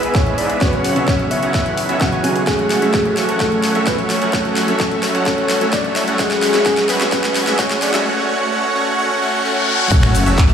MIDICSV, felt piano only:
0, 0, Header, 1, 2, 480
1, 0, Start_track
1, 0, Key_signature, 3, "major"
1, 0, Tempo, 465116
1, 633, Time_signature, 4, 2, 24, 8
1, 10875, End_track
2, 0, Start_track
2, 0, Title_t, "Felt piano"
2, 0, Program_c, 0, 0
2, 0, Control_c, 0, 64, 127
2, 0, Note_on_c, 0, 44, 83
2, 0, Note_on_c, 0, 52, 74
2, 0, Note_on_c, 0, 56, 73
2, 0, Note_on_c, 0, 59, 79
2, 0, Note_on_c, 0, 68, 89
2, 596, Note_off_c, 0, 44, 0
2, 600, Note_off_c, 0, 52, 0
2, 603, Note_off_c, 0, 56, 0
2, 606, Note_off_c, 0, 59, 0
2, 609, Note_off_c, 0, 68, 0
2, 625, Note_on_c, 0, 49, 82
2, 629, Note_on_c, 0, 54, 77
2, 634, Note_on_c, 0, 59, 77
2, 637, Note_on_c, 0, 66, 89
2, 645, Control_c, 0, 64, 0
2, 847, Control_c, 0, 64, 127
2, 960, Note_off_c, 0, 49, 0
2, 962, Note_off_c, 0, 54, 0
2, 964, Note_off_c, 0, 59, 0
2, 966, Note_off_c, 0, 66, 0
2, 980, Note_on_c, 0, 49, 81
2, 988, Note_on_c, 0, 54, 75
2, 996, Note_on_c, 0, 59, 75
2, 1004, Note_on_c, 0, 66, 91
2, 2042, Note_off_c, 0, 49, 0
2, 2046, Note_off_c, 0, 54, 0
2, 2050, Note_off_c, 0, 59, 0
2, 2054, Note_off_c, 0, 66, 0
2, 2066, Note_on_c, 0, 49, 85
2, 2070, Note_on_c, 0, 54, 76
2, 2074, Note_on_c, 0, 59, 81
2, 2078, Note_on_c, 0, 66, 89
2, 2280, Note_off_c, 0, 49, 0
2, 2282, Note_off_c, 0, 54, 0
2, 2284, Note_off_c, 0, 59, 0
2, 2286, Note_off_c, 0, 66, 0
2, 2305, Note_on_c, 0, 49, 87
2, 2309, Note_on_c, 0, 54, 78
2, 2313, Note_on_c, 0, 59, 82
2, 2318, Note_on_c, 0, 66, 99
2, 2520, Note_off_c, 0, 49, 0
2, 2522, Note_off_c, 0, 54, 0
2, 2524, Note_off_c, 0, 59, 0
2, 2526, Note_off_c, 0, 66, 0
2, 2545, Note_on_c, 0, 54, 80
2, 2549, Note_on_c, 0, 57, 74
2, 2553, Note_on_c, 0, 61, 74
2, 2557, Note_on_c, 0, 66, 85
2, 2566, Control_c, 0, 64, 0
2, 2728, Control_c, 0, 64, 127
2, 2880, Note_off_c, 0, 54, 0
2, 2882, Note_off_c, 0, 57, 0
2, 2884, Note_off_c, 0, 61, 0
2, 2886, Note_off_c, 0, 66, 0
2, 2900, Note_on_c, 0, 54, 72
2, 2908, Note_on_c, 0, 57, 66
2, 2917, Note_on_c, 0, 61, 66
2, 2924, Note_on_c, 0, 66, 82
2, 3487, Note_off_c, 0, 54, 0
2, 3491, Note_off_c, 0, 57, 0
2, 3495, Note_off_c, 0, 61, 0
2, 3499, Note_off_c, 0, 66, 0
2, 3505, Note_on_c, 0, 54, 74
2, 3510, Note_on_c, 0, 57, 66
2, 3514, Note_on_c, 0, 61, 71
2, 3518, Note_on_c, 0, 69, 85
2, 3840, Note_off_c, 0, 54, 0
2, 3842, Note_off_c, 0, 57, 0
2, 3844, Note_off_c, 0, 61, 0
2, 3846, Note_off_c, 0, 69, 0
2, 3859, Note_on_c, 0, 54, 72
2, 3867, Note_on_c, 0, 57, 66
2, 3875, Note_on_c, 0, 61, 65
2, 3884, Note_on_c, 0, 69, 82
2, 4446, Note_off_c, 0, 54, 0
2, 4450, Note_off_c, 0, 57, 0
2, 4454, Note_off_c, 0, 61, 0
2, 4459, Note_off_c, 0, 69, 0
2, 4466, Note_on_c, 0, 54, 78
2, 4470, Note_on_c, 0, 57, 74
2, 4474, Note_on_c, 0, 61, 74
2, 4478, Note_on_c, 0, 69, 88
2, 4485, Control_c, 0, 64, 0
2, 4678, Control_c, 0, 64, 127
2, 4800, Note_off_c, 0, 54, 0
2, 4802, Note_off_c, 0, 57, 0
2, 4804, Note_off_c, 0, 61, 0
2, 4806, Note_off_c, 0, 69, 0
2, 4820, Note_on_c, 0, 54, 82
2, 4827, Note_on_c, 0, 57, 70
2, 4836, Note_on_c, 0, 61, 72
2, 4844, Note_on_c, 0, 69, 85
2, 5407, Note_off_c, 0, 54, 0
2, 5411, Note_off_c, 0, 57, 0
2, 5415, Note_off_c, 0, 61, 0
2, 5419, Note_off_c, 0, 69, 0
2, 5425, Note_on_c, 0, 54, 80
2, 5429, Note_on_c, 0, 57, 70
2, 5433, Note_on_c, 0, 61, 70
2, 5437, Note_on_c, 0, 69, 89
2, 5760, Note_off_c, 0, 54, 0
2, 5762, Note_off_c, 0, 57, 0
2, 5764, Note_off_c, 0, 61, 0
2, 5766, Note_off_c, 0, 69, 0
2, 5779, Note_on_c, 0, 54, 78
2, 5787, Note_on_c, 0, 57, 68
2, 5796, Note_on_c, 0, 61, 69
2, 5804, Note_on_c, 0, 69, 85
2, 6367, Note_off_c, 0, 54, 0
2, 6371, Note_off_c, 0, 57, 0
2, 6375, Note_off_c, 0, 61, 0
2, 6379, Note_off_c, 0, 69, 0
2, 6385, Note_on_c, 0, 54, 85
2, 6389, Note_on_c, 0, 56, 76
2, 6394, Note_on_c, 0, 61, 77
2, 6398, Note_on_c, 0, 68, 92
2, 6405, Control_c, 0, 64, 0
2, 6571, Control_c, 0, 64, 127
2, 6720, Note_off_c, 0, 54, 0
2, 6722, Note_off_c, 0, 56, 0
2, 6724, Note_off_c, 0, 61, 0
2, 6726, Note_off_c, 0, 68, 0
2, 6739, Note_on_c, 0, 54, 82
2, 6748, Note_on_c, 0, 56, 77
2, 6756, Note_on_c, 0, 61, 75
2, 6764, Note_on_c, 0, 68, 90
2, 6846, Note_off_c, 0, 54, 0
2, 6851, Note_off_c, 0, 56, 0
2, 6855, Note_off_c, 0, 61, 0
2, 6859, Note_off_c, 0, 68, 0
2, 6866, Note_on_c, 0, 54, 82
2, 6870, Note_on_c, 0, 56, 74
2, 6874, Note_on_c, 0, 61, 78
2, 6878, Note_on_c, 0, 68, 87
2, 7200, Note_off_c, 0, 54, 0
2, 7202, Note_off_c, 0, 56, 0
2, 7204, Note_off_c, 0, 61, 0
2, 7206, Note_off_c, 0, 68, 0
2, 7219, Note_on_c, 0, 54, 77
2, 7228, Note_on_c, 0, 56, 70
2, 7236, Note_on_c, 0, 61, 73
2, 7244, Note_on_c, 0, 68, 86
2, 7327, Note_off_c, 0, 54, 0
2, 7331, Note_off_c, 0, 56, 0
2, 7335, Note_off_c, 0, 61, 0
2, 7339, Note_off_c, 0, 68, 0
2, 7346, Note_on_c, 0, 54, 80
2, 7350, Note_on_c, 0, 56, 77
2, 7354, Note_on_c, 0, 61, 78
2, 7358, Note_on_c, 0, 68, 86
2, 7680, Note_off_c, 0, 54, 0
2, 7682, Note_off_c, 0, 56, 0
2, 7684, Note_off_c, 0, 61, 0
2, 7686, Note_off_c, 0, 68, 0
2, 7700, Note_on_c, 0, 54, 79
2, 7708, Note_on_c, 0, 56, 75
2, 7716, Note_on_c, 0, 61, 70
2, 7724, Note_on_c, 0, 68, 90
2, 7807, Note_off_c, 0, 54, 0
2, 7811, Note_off_c, 0, 56, 0
2, 7815, Note_off_c, 0, 61, 0
2, 7819, Note_off_c, 0, 68, 0
2, 7825, Note_on_c, 0, 54, 88
2, 7829, Note_on_c, 0, 56, 83
2, 7834, Note_on_c, 0, 61, 76
2, 7838, Note_on_c, 0, 68, 98
2, 8160, Note_off_c, 0, 54, 0
2, 8162, Note_off_c, 0, 56, 0
2, 8164, Note_off_c, 0, 61, 0
2, 8166, Note_off_c, 0, 68, 0
2, 8179, Note_on_c, 0, 54, 83
2, 8187, Note_on_c, 0, 56, 76
2, 8195, Note_on_c, 0, 61, 74
2, 8203, Note_on_c, 0, 68, 87
2, 8286, Note_off_c, 0, 54, 0
2, 8291, Note_off_c, 0, 56, 0
2, 8294, Note_off_c, 0, 61, 0
2, 8299, Note_off_c, 0, 68, 0
2, 8325, Control_c, 0, 64, 0
2, 8514, Control_c, 0, 64, 127
2, 10245, Control_c, 0, 64, 0
2, 10875, End_track
0, 0, End_of_file